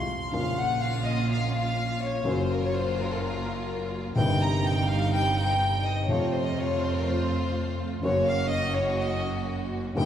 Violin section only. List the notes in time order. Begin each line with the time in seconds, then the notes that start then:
Already playing: C6
0.33 F5
0.57 F#5
0.81 F5
1.05 D#5
1.30 F5
1.54 F5
2.02 C#5
2.27 C5
2.51 A#4
2.63 C#5
2.75 C5
2.98 A#4
3.11 A4
3.23 A#4
4.18 G5
4.41 A#5
4.65 G5
4.88 F5
5.13 G5
5.36 G5
5.85 D#5
6.08 C#5
6.32 C5
6.44 D#5
6.56 C#5
6.81 C5
6.93 A#4
7.06 C5
8.03 C#5
8.27 F5
8.51 D#5
8.76 C#5
8.99 D#5
9.97 G5